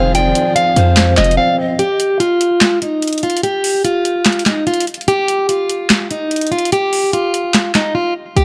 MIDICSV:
0, 0, Header, 1, 7, 480
1, 0, Start_track
1, 0, Tempo, 410959
1, 172, Time_signature, 4, 2, 24, 8
1, 9865, End_track
2, 0, Start_track
2, 0, Title_t, "Pan flute"
2, 0, Program_c, 0, 75
2, 0, Note_on_c, 0, 72, 83
2, 161, Note_off_c, 0, 72, 0
2, 169, Note_on_c, 0, 74, 110
2, 847, Note_off_c, 0, 74, 0
2, 899, Note_on_c, 0, 72, 88
2, 1573, Note_off_c, 0, 72, 0
2, 1608, Note_on_c, 0, 74, 78
2, 1838, Note_off_c, 0, 74, 0
2, 1851, Note_on_c, 0, 75, 84
2, 2079, Note_off_c, 0, 75, 0
2, 9865, End_track
3, 0, Start_track
3, 0, Title_t, "Steel-string acoustic guitar"
3, 0, Program_c, 1, 25
3, 0, Note_on_c, 1, 77, 85
3, 140, Note_off_c, 1, 77, 0
3, 174, Note_on_c, 1, 79, 103
3, 625, Note_off_c, 1, 79, 0
3, 650, Note_on_c, 1, 77, 87
3, 1328, Note_off_c, 1, 77, 0
3, 1371, Note_on_c, 1, 75, 74
3, 1581, Note_off_c, 1, 75, 0
3, 1604, Note_on_c, 1, 77, 86
3, 1817, Note_off_c, 1, 77, 0
3, 2091, Note_on_c, 1, 67, 103
3, 2543, Note_off_c, 1, 67, 0
3, 2569, Note_on_c, 1, 65, 89
3, 3247, Note_off_c, 1, 65, 0
3, 3293, Note_on_c, 1, 63, 72
3, 3744, Note_off_c, 1, 63, 0
3, 3775, Note_on_c, 1, 65, 79
3, 3983, Note_off_c, 1, 65, 0
3, 4011, Note_on_c, 1, 67, 98
3, 4463, Note_off_c, 1, 67, 0
3, 4492, Note_on_c, 1, 65, 77
3, 5169, Note_off_c, 1, 65, 0
3, 5212, Note_on_c, 1, 63, 71
3, 5421, Note_off_c, 1, 63, 0
3, 5452, Note_on_c, 1, 65, 89
3, 5662, Note_off_c, 1, 65, 0
3, 5934, Note_on_c, 1, 67, 105
3, 6384, Note_off_c, 1, 67, 0
3, 6412, Note_on_c, 1, 65, 85
3, 7089, Note_off_c, 1, 65, 0
3, 7135, Note_on_c, 1, 63, 71
3, 7585, Note_off_c, 1, 63, 0
3, 7610, Note_on_c, 1, 65, 86
3, 7820, Note_off_c, 1, 65, 0
3, 7856, Note_on_c, 1, 67, 101
3, 8305, Note_off_c, 1, 67, 0
3, 8331, Note_on_c, 1, 65, 82
3, 9009, Note_off_c, 1, 65, 0
3, 9050, Note_on_c, 1, 63, 74
3, 9260, Note_off_c, 1, 63, 0
3, 9283, Note_on_c, 1, 65, 84
3, 9496, Note_off_c, 1, 65, 0
3, 9770, Note_on_c, 1, 67, 110
3, 9865, Note_off_c, 1, 67, 0
3, 9865, End_track
4, 0, Start_track
4, 0, Title_t, "String section"
4, 0, Program_c, 2, 48
4, 0, Note_on_c, 2, 51, 84
4, 0, Note_on_c, 2, 60, 76
4, 0, Note_on_c, 2, 65, 76
4, 0, Note_on_c, 2, 68, 94
4, 2046, Note_off_c, 2, 60, 0
4, 2054, Note_off_c, 2, 51, 0
4, 2054, Note_off_c, 2, 65, 0
4, 2054, Note_off_c, 2, 68, 0
4, 9865, End_track
5, 0, Start_track
5, 0, Title_t, "Tine electric piano"
5, 0, Program_c, 3, 4
5, 0, Control_c, 3, 64, 127
5, 0, Note_on_c, 3, 53, 70
5, 0, Note_on_c, 3, 60, 84
5, 160, Note_off_c, 3, 53, 0
5, 174, Note_on_c, 3, 53, 93
5, 403, Note_off_c, 3, 53, 0
5, 417, Note_on_c, 3, 53, 71
5, 635, Note_off_c, 3, 53, 0
5, 649, Note_on_c, 3, 53, 67
5, 878, Note_off_c, 3, 53, 0
5, 892, Note_on_c, 3, 53, 91
5, 1126, Note_off_c, 3, 53, 0
5, 1132, Note_off_c, 3, 60, 0
5, 1140, Note_on_c, 3, 53, 72
5, 1360, Note_off_c, 3, 53, 0
5, 1374, Note_on_c, 3, 53, 76
5, 1612, Note_on_c, 3, 60, 94
5, 1836, Note_off_c, 3, 60, 0
5, 1850, Note_on_c, 3, 60, 82
5, 2091, Note_off_c, 3, 60, 0
5, 2093, Note_off_c, 3, 53, 0
5, 2105, Control_c, 3, 64, 0
5, 9865, End_track
6, 0, Start_track
6, 0, Title_t, "808-style bass"
6, 0, Program_c, 4, 38
6, 0, Note_on_c, 4, 29, 112
6, 383, Note_off_c, 4, 29, 0
6, 892, Note_on_c, 4, 41, 109
6, 1353, Note_off_c, 4, 41, 0
6, 1372, Note_on_c, 4, 29, 109
6, 1612, Note_off_c, 4, 29, 0
6, 9771, Note_on_c, 4, 36, 109
6, 9865, Note_off_c, 4, 36, 0
6, 9865, End_track
7, 0, Start_track
7, 0, Title_t, "Drums"
7, 172, Note_on_c, 9, 42, 75
7, 289, Note_off_c, 9, 42, 0
7, 412, Note_on_c, 9, 42, 90
7, 529, Note_off_c, 9, 42, 0
7, 652, Note_on_c, 9, 42, 78
7, 769, Note_off_c, 9, 42, 0
7, 892, Note_on_c, 9, 42, 73
7, 1009, Note_off_c, 9, 42, 0
7, 1127, Note_on_c, 9, 39, 100
7, 1132, Note_on_c, 9, 38, 121
7, 1132, Note_on_c, 9, 42, 72
7, 1244, Note_off_c, 9, 39, 0
7, 1249, Note_off_c, 9, 38, 0
7, 1249, Note_off_c, 9, 42, 0
7, 1367, Note_on_c, 9, 39, 73
7, 1372, Note_on_c, 9, 38, 91
7, 1372, Note_on_c, 9, 42, 52
7, 1452, Note_off_c, 9, 42, 0
7, 1452, Note_on_c, 9, 42, 50
7, 1484, Note_off_c, 9, 39, 0
7, 1489, Note_off_c, 9, 38, 0
7, 1532, Note_off_c, 9, 42, 0
7, 1532, Note_on_c, 9, 42, 52
7, 1649, Note_off_c, 9, 42, 0
7, 2092, Note_on_c, 9, 42, 73
7, 2209, Note_off_c, 9, 42, 0
7, 2332, Note_on_c, 9, 42, 83
7, 2449, Note_off_c, 9, 42, 0
7, 2572, Note_on_c, 9, 42, 79
7, 2689, Note_off_c, 9, 42, 0
7, 2812, Note_on_c, 9, 42, 74
7, 2929, Note_off_c, 9, 42, 0
7, 3047, Note_on_c, 9, 39, 100
7, 3052, Note_on_c, 9, 38, 119
7, 3052, Note_on_c, 9, 42, 71
7, 3164, Note_off_c, 9, 39, 0
7, 3169, Note_off_c, 9, 38, 0
7, 3169, Note_off_c, 9, 42, 0
7, 3292, Note_on_c, 9, 42, 59
7, 3409, Note_off_c, 9, 42, 0
7, 3532, Note_on_c, 9, 42, 60
7, 3592, Note_off_c, 9, 42, 0
7, 3592, Note_on_c, 9, 42, 59
7, 3652, Note_off_c, 9, 42, 0
7, 3652, Note_on_c, 9, 42, 60
7, 3711, Note_off_c, 9, 42, 0
7, 3711, Note_on_c, 9, 42, 59
7, 3772, Note_off_c, 9, 42, 0
7, 3772, Note_on_c, 9, 42, 41
7, 3851, Note_off_c, 9, 42, 0
7, 3851, Note_on_c, 9, 42, 51
7, 3931, Note_off_c, 9, 42, 0
7, 3931, Note_on_c, 9, 42, 67
7, 4012, Note_off_c, 9, 42, 0
7, 4012, Note_on_c, 9, 42, 75
7, 4128, Note_off_c, 9, 42, 0
7, 4251, Note_on_c, 9, 46, 87
7, 4368, Note_off_c, 9, 46, 0
7, 4491, Note_on_c, 9, 42, 74
7, 4608, Note_off_c, 9, 42, 0
7, 4731, Note_on_c, 9, 42, 73
7, 4848, Note_off_c, 9, 42, 0
7, 4967, Note_on_c, 9, 39, 96
7, 4971, Note_on_c, 9, 42, 44
7, 4972, Note_on_c, 9, 38, 112
7, 5052, Note_off_c, 9, 42, 0
7, 5052, Note_on_c, 9, 42, 58
7, 5083, Note_off_c, 9, 39, 0
7, 5089, Note_off_c, 9, 38, 0
7, 5131, Note_off_c, 9, 42, 0
7, 5131, Note_on_c, 9, 42, 74
7, 5206, Note_on_c, 9, 39, 72
7, 5211, Note_off_c, 9, 42, 0
7, 5211, Note_on_c, 9, 42, 64
7, 5212, Note_on_c, 9, 38, 89
7, 5323, Note_off_c, 9, 39, 0
7, 5328, Note_off_c, 9, 38, 0
7, 5328, Note_off_c, 9, 42, 0
7, 5452, Note_on_c, 9, 42, 43
7, 5532, Note_off_c, 9, 42, 0
7, 5532, Note_on_c, 9, 42, 56
7, 5612, Note_off_c, 9, 42, 0
7, 5612, Note_on_c, 9, 42, 73
7, 5692, Note_off_c, 9, 42, 0
7, 5692, Note_on_c, 9, 42, 52
7, 5772, Note_off_c, 9, 42, 0
7, 5772, Note_on_c, 9, 42, 54
7, 5852, Note_off_c, 9, 42, 0
7, 5852, Note_on_c, 9, 42, 54
7, 5932, Note_off_c, 9, 42, 0
7, 5932, Note_on_c, 9, 42, 74
7, 6049, Note_off_c, 9, 42, 0
7, 6172, Note_on_c, 9, 42, 82
7, 6289, Note_off_c, 9, 42, 0
7, 6412, Note_on_c, 9, 42, 75
7, 6529, Note_off_c, 9, 42, 0
7, 6652, Note_on_c, 9, 42, 78
7, 6769, Note_off_c, 9, 42, 0
7, 6887, Note_on_c, 9, 39, 93
7, 6892, Note_on_c, 9, 38, 120
7, 6892, Note_on_c, 9, 42, 69
7, 7004, Note_off_c, 9, 39, 0
7, 7009, Note_off_c, 9, 38, 0
7, 7009, Note_off_c, 9, 42, 0
7, 7132, Note_on_c, 9, 42, 59
7, 7248, Note_off_c, 9, 42, 0
7, 7372, Note_on_c, 9, 42, 59
7, 7431, Note_off_c, 9, 42, 0
7, 7431, Note_on_c, 9, 42, 59
7, 7492, Note_off_c, 9, 42, 0
7, 7492, Note_on_c, 9, 42, 60
7, 7552, Note_off_c, 9, 42, 0
7, 7552, Note_on_c, 9, 42, 62
7, 7612, Note_off_c, 9, 42, 0
7, 7612, Note_on_c, 9, 42, 40
7, 7692, Note_off_c, 9, 42, 0
7, 7692, Note_on_c, 9, 42, 53
7, 7772, Note_off_c, 9, 42, 0
7, 7772, Note_on_c, 9, 42, 66
7, 7852, Note_off_c, 9, 42, 0
7, 7852, Note_on_c, 9, 42, 74
7, 7968, Note_off_c, 9, 42, 0
7, 8091, Note_on_c, 9, 46, 86
7, 8208, Note_off_c, 9, 46, 0
7, 8332, Note_on_c, 9, 42, 77
7, 8449, Note_off_c, 9, 42, 0
7, 8572, Note_on_c, 9, 42, 70
7, 8689, Note_off_c, 9, 42, 0
7, 8807, Note_on_c, 9, 39, 97
7, 8812, Note_on_c, 9, 38, 117
7, 8812, Note_on_c, 9, 42, 70
7, 8924, Note_off_c, 9, 39, 0
7, 8928, Note_off_c, 9, 42, 0
7, 8929, Note_off_c, 9, 38, 0
7, 9047, Note_on_c, 9, 39, 71
7, 9052, Note_on_c, 9, 38, 90
7, 9052, Note_on_c, 9, 42, 63
7, 9163, Note_off_c, 9, 39, 0
7, 9168, Note_off_c, 9, 38, 0
7, 9168, Note_off_c, 9, 42, 0
7, 9771, Note_on_c, 9, 42, 74
7, 9865, Note_off_c, 9, 42, 0
7, 9865, End_track
0, 0, End_of_file